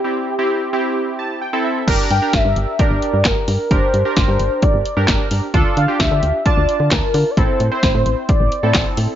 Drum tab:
CC |--------|x-------|--------|--------|
HH |--------|xxxxxxxo|xxxxxxxo|xxxxxxxo|
CP |--------|------x-|------x-|------x-|
SD |--------|--o---o-|--o---o-|--o---o-|
BD |--------|o-o-o-o-|o-o-o-o-|o-o-o-o-|

CC |--------|
HH |xxxxxxxo|
CP |------x-|
SD |--o---o-|
BD |o-o-o-o-|